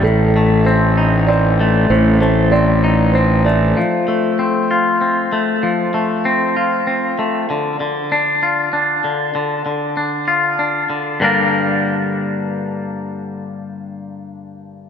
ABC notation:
X:1
M:3/4
L:1/8
Q:1/4=97
K:Gm
V:1 name="Felt piano"
A2 c2 d2 | c c d2 c d | z6 | z6 |
z6 | z6 | z6 | z6 |]
V:2 name="Clean electric guitar"
A,, A, C E C A, | A,, A, C E C A, | F, A, C F C A, | F, A, C F C A, |
D, D, D F D D, | D, D, D F D D, | [G,,D,G,B,DB]6- | [G,,D,G,B,DB]6 |]
V:3 name="Fingered electric bass" clef=bass
A,,,6 | A,,,6 | z6 | z6 |
z6 | z6 | z6 | z6 |]